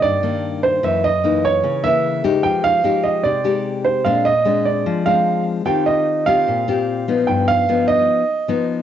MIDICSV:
0, 0, Header, 1, 3, 480
1, 0, Start_track
1, 0, Tempo, 402685
1, 989, Time_signature, 4, 2, 24, 8
1, 10515, End_track
2, 0, Start_track
2, 0, Title_t, "Grand piano"
2, 0, Program_c, 0, 0
2, 26, Note_on_c, 0, 74, 94
2, 754, Note_on_c, 0, 72, 89
2, 770, Note_off_c, 0, 74, 0
2, 999, Note_off_c, 0, 72, 0
2, 1005, Note_on_c, 0, 76, 76
2, 1241, Note_on_c, 0, 75, 98
2, 1244, Note_off_c, 0, 76, 0
2, 1725, Note_on_c, 0, 73, 97
2, 1730, Note_off_c, 0, 75, 0
2, 2189, Note_on_c, 0, 76, 96
2, 2212, Note_off_c, 0, 73, 0
2, 2636, Note_off_c, 0, 76, 0
2, 2899, Note_on_c, 0, 79, 88
2, 3146, Note_on_c, 0, 77, 104
2, 3152, Note_off_c, 0, 79, 0
2, 3617, Note_on_c, 0, 75, 81
2, 3642, Note_off_c, 0, 77, 0
2, 3855, Note_on_c, 0, 74, 88
2, 3871, Note_off_c, 0, 75, 0
2, 4534, Note_off_c, 0, 74, 0
2, 4583, Note_on_c, 0, 72, 79
2, 4821, Note_on_c, 0, 77, 85
2, 4833, Note_off_c, 0, 72, 0
2, 5065, Note_on_c, 0, 75, 98
2, 5072, Note_off_c, 0, 77, 0
2, 5546, Note_on_c, 0, 74, 76
2, 5561, Note_off_c, 0, 75, 0
2, 6027, Note_on_c, 0, 77, 88
2, 6042, Note_off_c, 0, 74, 0
2, 6474, Note_off_c, 0, 77, 0
2, 6747, Note_on_c, 0, 79, 79
2, 6989, Note_on_c, 0, 75, 87
2, 6995, Note_off_c, 0, 79, 0
2, 7465, Note_on_c, 0, 77, 101
2, 7483, Note_off_c, 0, 75, 0
2, 8667, Note_on_c, 0, 79, 82
2, 8702, Note_off_c, 0, 77, 0
2, 8915, Note_off_c, 0, 79, 0
2, 8915, Note_on_c, 0, 77, 106
2, 9358, Note_off_c, 0, 77, 0
2, 9391, Note_on_c, 0, 75, 98
2, 10301, Note_off_c, 0, 75, 0
2, 10515, End_track
3, 0, Start_track
3, 0, Title_t, "Nylon-string guitar"
3, 0, Program_c, 1, 24
3, 0, Note_on_c, 1, 51, 59
3, 0, Note_on_c, 1, 58, 52
3, 0, Note_on_c, 1, 62, 55
3, 35, Note_on_c, 1, 43, 69
3, 229, Note_off_c, 1, 51, 0
3, 233, Note_off_c, 1, 58, 0
3, 235, Note_off_c, 1, 62, 0
3, 273, Note_on_c, 1, 51, 60
3, 276, Note_on_c, 1, 58, 54
3, 283, Note_on_c, 1, 62, 57
3, 953, Note_off_c, 1, 51, 0
3, 956, Note_off_c, 1, 58, 0
3, 956, Note_off_c, 1, 62, 0
3, 969, Note_off_c, 1, 43, 0
3, 991, Note_on_c, 1, 42, 65
3, 994, Note_on_c, 1, 52, 58
3, 1000, Note_on_c, 1, 58, 50
3, 1002, Note_on_c, 1, 63, 53
3, 1300, Note_off_c, 1, 52, 0
3, 1301, Note_off_c, 1, 58, 0
3, 1305, Note_off_c, 1, 63, 0
3, 1473, Note_on_c, 1, 52, 56
3, 1478, Note_on_c, 1, 58, 57
3, 1485, Note_on_c, 1, 63, 64
3, 1928, Note_off_c, 1, 42, 0
3, 1948, Note_on_c, 1, 49, 67
3, 2153, Note_off_c, 1, 52, 0
3, 2155, Note_off_c, 1, 58, 0
3, 2159, Note_off_c, 1, 63, 0
3, 2187, Note_on_c, 1, 52, 64
3, 2196, Note_on_c, 1, 58, 60
3, 2631, Note_off_c, 1, 52, 0
3, 2633, Note_off_c, 1, 58, 0
3, 2667, Note_on_c, 1, 56, 70
3, 2672, Note_on_c, 1, 63, 55
3, 2672, Note_on_c, 1, 67, 76
3, 2885, Note_off_c, 1, 49, 0
3, 2900, Note_on_c, 1, 53, 65
3, 3349, Note_off_c, 1, 56, 0
3, 3350, Note_off_c, 1, 63, 0
3, 3352, Note_off_c, 1, 67, 0
3, 3380, Note_on_c, 1, 56, 59
3, 3384, Note_on_c, 1, 63, 54
3, 3394, Note_on_c, 1, 67, 64
3, 3841, Note_off_c, 1, 53, 0
3, 3869, Note_on_c, 1, 48, 66
3, 4066, Note_off_c, 1, 56, 0
3, 4069, Note_off_c, 1, 63, 0
3, 4071, Note_off_c, 1, 67, 0
3, 4101, Note_on_c, 1, 56, 55
3, 4106, Note_on_c, 1, 63, 53
3, 4110, Note_on_c, 1, 67, 64
3, 4787, Note_off_c, 1, 56, 0
3, 4790, Note_off_c, 1, 63, 0
3, 4790, Note_off_c, 1, 67, 0
3, 4805, Note_off_c, 1, 48, 0
3, 4828, Note_on_c, 1, 46, 60
3, 4828, Note_on_c, 1, 56, 48
3, 4836, Note_on_c, 1, 60, 57
3, 4841, Note_on_c, 1, 62, 66
3, 5137, Note_off_c, 1, 56, 0
3, 5141, Note_off_c, 1, 60, 0
3, 5144, Note_off_c, 1, 62, 0
3, 5306, Note_on_c, 1, 56, 65
3, 5312, Note_on_c, 1, 60, 56
3, 5322, Note_on_c, 1, 62, 61
3, 5765, Note_off_c, 1, 46, 0
3, 5795, Note_on_c, 1, 53, 68
3, 5989, Note_off_c, 1, 56, 0
3, 5992, Note_off_c, 1, 60, 0
3, 5997, Note_off_c, 1, 62, 0
3, 6029, Note_on_c, 1, 56, 54
3, 6037, Note_on_c, 1, 60, 59
3, 6039, Note_on_c, 1, 62, 61
3, 6711, Note_off_c, 1, 56, 0
3, 6713, Note_off_c, 1, 60, 0
3, 6715, Note_off_c, 1, 62, 0
3, 6727, Note_off_c, 1, 53, 0
3, 6743, Note_on_c, 1, 51, 64
3, 6748, Note_on_c, 1, 60, 52
3, 6750, Note_on_c, 1, 65, 50
3, 6757, Note_on_c, 1, 67, 55
3, 7429, Note_off_c, 1, 60, 0
3, 7431, Note_off_c, 1, 65, 0
3, 7434, Note_off_c, 1, 67, 0
3, 7474, Note_on_c, 1, 60, 52
3, 7480, Note_on_c, 1, 65, 61
3, 7480, Note_on_c, 1, 67, 62
3, 7682, Note_off_c, 1, 51, 0
3, 7722, Note_on_c, 1, 46, 64
3, 7913, Note_off_c, 1, 60, 0
3, 7915, Note_off_c, 1, 65, 0
3, 7916, Note_off_c, 1, 67, 0
3, 7960, Note_on_c, 1, 60, 57
3, 7963, Note_on_c, 1, 65, 59
3, 7972, Note_on_c, 1, 67, 66
3, 8396, Note_off_c, 1, 60, 0
3, 8396, Note_off_c, 1, 65, 0
3, 8402, Note_off_c, 1, 67, 0
3, 8438, Note_on_c, 1, 53, 58
3, 8444, Note_on_c, 1, 59, 62
3, 8450, Note_on_c, 1, 63, 66
3, 8651, Note_off_c, 1, 46, 0
3, 8677, Note_on_c, 1, 43, 67
3, 9114, Note_off_c, 1, 53, 0
3, 9118, Note_off_c, 1, 59, 0
3, 9119, Note_off_c, 1, 63, 0
3, 9163, Note_on_c, 1, 53, 54
3, 9168, Note_on_c, 1, 59, 58
3, 9176, Note_on_c, 1, 63, 58
3, 9608, Note_off_c, 1, 43, 0
3, 9800, Note_off_c, 1, 53, 0
3, 9803, Note_off_c, 1, 59, 0
3, 9807, Note_off_c, 1, 63, 0
3, 10111, Note_on_c, 1, 53, 53
3, 10120, Note_on_c, 1, 59, 54
3, 10120, Note_on_c, 1, 63, 70
3, 10515, Note_off_c, 1, 53, 0
3, 10515, Note_off_c, 1, 59, 0
3, 10515, Note_off_c, 1, 63, 0
3, 10515, End_track
0, 0, End_of_file